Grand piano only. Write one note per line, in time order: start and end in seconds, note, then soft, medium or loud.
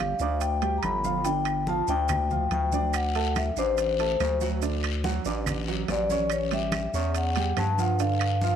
0.00 0.13 G3 medium
0.00 0.13 G4 medium
0.00 0.13 G5 medium
0.21 0.55 D4 medium
0.21 0.55 D5 medium
0.21 0.56 D6 medium
0.62 0.97 G3 medium
0.62 0.97 G4 medium
0.62 0.97 G5 medium
1.04 1.22 F3 medium
1.04 1.22 F4 medium
1.04 1.22 F5 medium
1.26 1.60 D3 medium
1.26 1.60 D4 medium
1.26 1.60 D5 medium
1.68 1.85 F3 medium
1.68 1.85 F4 medium
1.68 1.86 F5 medium
1.89 2.23 D4 medium
1.89 2.24 D5 medium
1.89 2.24 D6 medium
2.31 2.65 F3 medium
2.31 2.66 F4 medium
2.31 2.66 F5 medium
2.73 3.08 D4 medium
2.73 3.08 D5 medium
2.73 3.08 D6 medium
3.16 3.50 A3 medium
3.16 3.50 A4 medium
3.16 3.50 A5 medium
3.58 3.92 D4 medium
3.58 3.92 D5 medium
3.58 3.93 D6 medium
3.99 4.34 A3 medium
3.99 4.34 A4 medium
3.99 4.34 A5 medium
4.41 4.59 F#3 medium
4.41 4.59 F#4 medium
4.41 4.59 F#5 medium
4.62 4.97 D3 medium
4.62 4.97 D4 medium
4.62 4.97 D5 medium
5.04 5.22 F#3 medium
5.04 5.22 F#4 medium
5.04 5.22 F#5 medium
5.26 5.60 D4 medium
5.26 5.60 D5 medium
5.26 5.60 D6 medium
5.68 6.03 F#3 medium
5.68 6.03 F#4 medium
5.68 6.03 F#5 medium
6.11 6.45 C#4 medium
6.11 6.45 C#5 medium
6.11 6.45 C#6 medium
6.52 6.87 G3 medium
6.52 6.87 G4 medium
6.52 6.87 G5 medium
6.94 7.29 C#4 medium
6.94 7.29 C#5 medium
6.94 7.29 C#6 medium
7.37 7.71 G3 medium
7.37 7.71 G4 medium
7.37 7.72 G5 medium
7.79 7.96 F3 medium
7.79 7.96 F4 medium
7.79 7.96 F5 medium
8.00 8.34 D3 medium
8.00 8.35 D4 medium
8.00 8.35 D5 medium
8.43 8.56 F3 medium
8.43 8.56 F4 medium
8.43 8.56 F5 medium